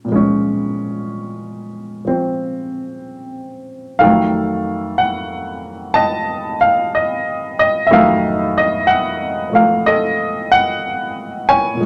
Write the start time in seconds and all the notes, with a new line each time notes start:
Already playing: G#3 C#4
0.05 A#2 F3
0.12 G#3 C#4
2.05 F3 C4
3.99 F2 D#3 F#3 A4 F5
4.04 A3
4.98 F#5
5.94 D#5 A5
6.61 F5
6.95 D#5
7.59 D#5
7.87 F2 D#3 E5
7.91 F#3 A3 A4 F5
8.58 D#5
8.87 F#5
9.50 F3 A3
9.55 F5
9.86 A4 D#5
10.52 F#5
11.49 C#5 G#5
11.74 A#2 F3
11.81 G#3